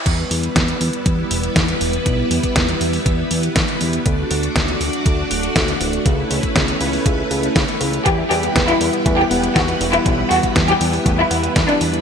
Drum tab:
CC |x---------------|----------------|----------------|----------------|
HH |x-oxxxoxx-oxxxox|x-oxxxoox-oxxxox|x-oxxxoxx-oxxxox|x-oxxxoox-oxxxox|
SD |----o-------o---|----o-------o---|----o-------o---|----o-------o---|
BD |o---o---o---o---|o--oo---o---o---|o---o---o---o---|o--oo---o---o---|

CC |----------------|----------------|
HH |x-oxxxoxx-oxxxox|x-oxxxoox-oxxxox|
SD |----o-------o---|----o-------o---|
BD |o---o---o---o---|o--oo---o---o---|